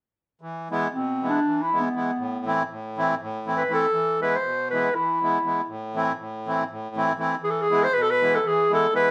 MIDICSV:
0, 0, Header, 1, 3, 480
1, 0, Start_track
1, 0, Tempo, 500000
1, 8744, End_track
2, 0, Start_track
2, 0, Title_t, "Clarinet"
2, 0, Program_c, 0, 71
2, 898, Note_on_c, 0, 60, 66
2, 1214, Note_off_c, 0, 60, 0
2, 1228, Note_on_c, 0, 62, 73
2, 1553, Note_on_c, 0, 64, 69
2, 1567, Note_off_c, 0, 62, 0
2, 1730, Note_on_c, 0, 59, 60
2, 1744, Note_off_c, 0, 64, 0
2, 2409, Note_off_c, 0, 59, 0
2, 3426, Note_on_c, 0, 71, 74
2, 3571, Note_off_c, 0, 71, 0
2, 3584, Note_on_c, 0, 69, 84
2, 4020, Note_off_c, 0, 69, 0
2, 4049, Note_on_c, 0, 71, 76
2, 4184, Note_on_c, 0, 72, 85
2, 4198, Note_off_c, 0, 71, 0
2, 4509, Note_off_c, 0, 72, 0
2, 4514, Note_on_c, 0, 71, 80
2, 4751, Note_on_c, 0, 64, 69
2, 4766, Note_off_c, 0, 71, 0
2, 5640, Note_off_c, 0, 64, 0
2, 7138, Note_on_c, 0, 68, 74
2, 7199, Note_on_c, 0, 69, 67
2, 7213, Note_off_c, 0, 68, 0
2, 7310, Note_on_c, 0, 68, 85
2, 7324, Note_off_c, 0, 69, 0
2, 7521, Note_on_c, 0, 72, 95
2, 7535, Note_off_c, 0, 68, 0
2, 7617, Note_on_c, 0, 71, 96
2, 7631, Note_off_c, 0, 72, 0
2, 7700, Note_on_c, 0, 69, 86
2, 7714, Note_off_c, 0, 71, 0
2, 7776, Note_on_c, 0, 71, 95
2, 7791, Note_off_c, 0, 69, 0
2, 8018, Note_on_c, 0, 69, 78
2, 8032, Note_off_c, 0, 71, 0
2, 8128, Note_on_c, 0, 68, 79
2, 8143, Note_off_c, 0, 69, 0
2, 8368, Note_off_c, 0, 68, 0
2, 8387, Note_on_c, 0, 69, 83
2, 8572, Note_off_c, 0, 69, 0
2, 8596, Note_on_c, 0, 71, 94
2, 8744, Note_off_c, 0, 71, 0
2, 8744, End_track
3, 0, Start_track
3, 0, Title_t, "Accordion"
3, 0, Program_c, 1, 21
3, 398, Note_on_c, 1, 52, 58
3, 658, Note_off_c, 1, 52, 0
3, 673, Note_on_c, 1, 52, 61
3, 679, Note_on_c, 1, 56, 64
3, 681, Note_on_c, 1, 59, 62
3, 688, Note_on_c, 1, 64, 73
3, 837, Note_off_c, 1, 52, 0
3, 840, Note_off_c, 1, 56, 0
3, 841, Note_off_c, 1, 59, 0
3, 845, Note_off_c, 1, 64, 0
3, 902, Note_on_c, 1, 47, 53
3, 1175, Note_on_c, 1, 52, 51
3, 1180, Note_on_c, 1, 56, 42
3, 1184, Note_on_c, 1, 59, 43
3, 1191, Note_on_c, 1, 64, 52
3, 1281, Note_off_c, 1, 47, 0
3, 1337, Note_off_c, 1, 52, 0
3, 1339, Note_off_c, 1, 56, 0
3, 1341, Note_off_c, 1, 59, 0
3, 1345, Note_off_c, 1, 64, 0
3, 1405, Note_on_c, 1, 52, 58
3, 1631, Note_off_c, 1, 52, 0
3, 1645, Note_on_c, 1, 52, 57
3, 1656, Note_on_c, 1, 56, 45
3, 1657, Note_on_c, 1, 59, 46
3, 1662, Note_on_c, 1, 64, 51
3, 1804, Note_off_c, 1, 52, 0
3, 1810, Note_off_c, 1, 56, 0
3, 1810, Note_off_c, 1, 59, 0
3, 1813, Note_off_c, 1, 64, 0
3, 1868, Note_on_c, 1, 52, 45
3, 1870, Note_on_c, 1, 56, 45
3, 1877, Note_on_c, 1, 59, 39
3, 1881, Note_on_c, 1, 64, 52
3, 2023, Note_off_c, 1, 52, 0
3, 2024, Note_off_c, 1, 56, 0
3, 2028, Note_off_c, 1, 59, 0
3, 2030, Note_off_c, 1, 64, 0
3, 2093, Note_on_c, 1, 45, 63
3, 2352, Note_on_c, 1, 52, 70
3, 2358, Note_on_c, 1, 57, 57
3, 2363, Note_on_c, 1, 60, 60
3, 2368, Note_on_c, 1, 64, 66
3, 2468, Note_off_c, 1, 45, 0
3, 2516, Note_off_c, 1, 52, 0
3, 2519, Note_off_c, 1, 57, 0
3, 2522, Note_off_c, 1, 60, 0
3, 2524, Note_off_c, 1, 64, 0
3, 2586, Note_on_c, 1, 45, 64
3, 2851, Note_on_c, 1, 52, 61
3, 2856, Note_on_c, 1, 57, 54
3, 2864, Note_on_c, 1, 60, 58
3, 2866, Note_on_c, 1, 64, 70
3, 2964, Note_off_c, 1, 45, 0
3, 3015, Note_off_c, 1, 52, 0
3, 3017, Note_off_c, 1, 57, 0
3, 3022, Note_off_c, 1, 60, 0
3, 3023, Note_off_c, 1, 64, 0
3, 3084, Note_on_c, 1, 45, 77
3, 3321, Note_on_c, 1, 52, 57
3, 3326, Note_on_c, 1, 57, 50
3, 3332, Note_on_c, 1, 60, 47
3, 3333, Note_on_c, 1, 64, 60
3, 3435, Note_off_c, 1, 45, 0
3, 3482, Note_off_c, 1, 52, 0
3, 3484, Note_off_c, 1, 57, 0
3, 3487, Note_off_c, 1, 60, 0
3, 3488, Note_off_c, 1, 64, 0
3, 3539, Note_on_c, 1, 52, 54
3, 3546, Note_on_c, 1, 57, 43
3, 3553, Note_on_c, 1, 60, 42
3, 3560, Note_on_c, 1, 64, 61
3, 3699, Note_off_c, 1, 52, 0
3, 3703, Note_off_c, 1, 57, 0
3, 3706, Note_off_c, 1, 60, 0
3, 3709, Note_off_c, 1, 64, 0
3, 3766, Note_on_c, 1, 52, 63
3, 4017, Note_off_c, 1, 52, 0
3, 4031, Note_on_c, 1, 52, 58
3, 4038, Note_on_c, 1, 56, 57
3, 4046, Note_on_c, 1, 59, 48
3, 4048, Note_on_c, 1, 64, 58
3, 4196, Note_off_c, 1, 52, 0
3, 4199, Note_off_c, 1, 56, 0
3, 4203, Note_off_c, 1, 59, 0
3, 4204, Note_off_c, 1, 64, 0
3, 4261, Note_on_c, 1, 47, 52
3, 4530, Note_on_c, 1, 52, 51
3, 4537, Note_on_c, 1, 56, 47
3, 4540, Note_on_c, 1, 59, 51
3, 4544, Note_on_c, 1, 64, 62
3, 4641, Note_off_c, 1, 47, 0
3, 4694, Note_off_c, 1, 52, 0
3, 4698, Note_off_c, 1, 56, 0
3, 4699, Note_off_c, 1, 59, 0
3, 4701, Note_off_c, 1, 64, 0
3, 4761, Note_on_c, 1, 52, 55
3, 4986, Note_off_c, 1, 52, 0
3, 5000, Note_on_c, 1, 52, 51
3, 5010, Note_on_c, 1, 56, 49
3, 5013, Note_on_c, 1, 59, 48
3, 5024, Note_on_c, 1, 64, 60
3, 5161, Note_off_c, 1, 52, 0
3, 5166, Note_off_c, 1, 56, 0
3, 5168, Note_off_c, 1, 59, 0
3, 5173, Note_off_c, 1, 64, 0
3, 5227, Note_on_c, 1, 52, 46
3, 5232, Note_on_c, 1, 56, 46
3, 5238, Note_on_c, 1, 59, 45
3, 5247, Note_on_c, 1, 64, 49
3, 5383, Note_off_c, 1, 52, 0
3, 5385, Note_off_c, 1, 56, 0
3, 5388, Note_off_c, 1, 59, 0
3, 5392, Note_off_c, 1, 64, 0
3, 5448, Note_on_c, 1, 45, 68
3, 5703, Note_on_c, 1, 52, 68
3, 5711, Note_on_c, 1, 57, 53
3, 5717, Note_on_c, 1, 60, 58
3, 5725, Note_on_c, 1, 64, 75
3, 5824, Note_off_c, 1, 45, 0
3, 5871, Note_off_c, 1, 52, 0
3, 5875, Note_off_c, 1, 57, 0
3, 5878, Note_off_c, 1, 60, 0
3, 5882, Note_off_c, 1, 64, 0
3, 5931, Note_on_c, 1, 45, 64
3, 6199, Note_on_c, 1, 52, 65
3, 6204, Note_on_c, 1, 57, 52
3, 6214, Note_on_c, 1, 60, 58
3, 6220, Note_on_c, 1, 64, 72
3, 6314, Note_off_c, 1, 45, 0
3, 6367, Note_off_c, 1, 52, 0
3, 6370, Note_off_c, 1, 57, 0
3, 6374, Note_off_c, 1, 60, 0
3, 6378, Note_off_c, 1, 64, 0
3, 6437, Note_on_c, 1, 45, 66
3, 6672, Note_on_c, 1, 52, 54
3, 6680, Note_on_c, 1, 57, 53
3, 6684, Note_on_c, 1, 60, 52
3, 6690, Note_on_c, 1, 64, 69
3, 6789, Note_off_c, 1, 45, 0
3, 6835, Note_off_c, 1, 52, 0
3, 6839, Note_off_c, 1, 57, 0
3, 6841, Note_off_c, 1, 60, 0
3, 6844, Note_off_c, 1, 64, 0
3, 6888, Note_on_c, 1, 52, 52
3, 6895, Note_on_c, 1, 57, 48
3, 6905, Note_on_c, 1, 60, 45
3, 6910, Note_on_c, 1, 64, 58
3, 7050, Note_off_c, 1, 52, 0
3, 7054, Note_off_c, 1, 57, 0
3, 7059, Note_off_c, 1, 60, 0
3, 7061, Note_off_c, 1, 64, 0
3, 7119, Note_on_c, 1, 52, 61
3, 7371, Note_off_c, 1, 52, 0
3, 7385, Note_on_c, 1, 52, 57
3, 7394, Note_on_c, 1, 56, 54
3, 7397, Note_on_c, 1, 59, 58
3, 7404, Note_on_c, 1, 64, 64
3, 7549, Note_off_c, 1, 52, 0
3, 7553, Note_off_c, 1, 56, 0
3, 7554, Note_off_c, 1, 59, 0
3, 7558, Note_off_c, 1, 64, 0
3, 7618, Note_on_c, 1, 47, 66
3, 7881, Note_on_c, 1, 52, 61
3, 7882, Note_on_c, 1, 56, 49
3, 7894, Note_on_c, 1, 64, 59
3, 7895, Note_on_c, 1, 59, 57
3, 7993, Note_off_c, 1, 47, 0
3, 8044, Note_off_c, 1, 52, 0
3, 8045, Note_off_c, 1, 56, 0
3, 8051, Note_off_c, 1, 59, 0
3, 8051, Note_off_c, 1, 64, 0
3, 8111, Note_on_c, 1, 52, 71
3, 8336, Note_off_c, 1, 52, 0
3, 8351, Note_on_c, 1, 52, 54
3, 8353, Note_on_c, 1, 56, 55
3, 8364, Note_on_c, 1, 64, 68
3, 8365, Note_on_c, 1, 59, 51
3, 8509, Note_off_c, 1, 52, 0
3, 8511, Note_off_c, 1, 56, 0
3, 8516, Note_off_c, 1, 64, 0
3, 8517, Note_off_c, 1, 59, 0
3, 8566, Note_on_c, 1, 52, 60
3, 8570, Note_on_c, 1, 56, 47
3, 8579, Note_on_c, 1, 59, 50
3, 8580, Note_on_c, 1, 64, 57
3, 8724, Note_off_c, 1, 52, 0
3, 8726, Note_off_c, 1, 56, 0
3, 8731, Note_off_c, 1, 59, 0
3, 8731, Note_off_c, 1, 64, 0
3, 8744, End_track
0, 0, End_of_file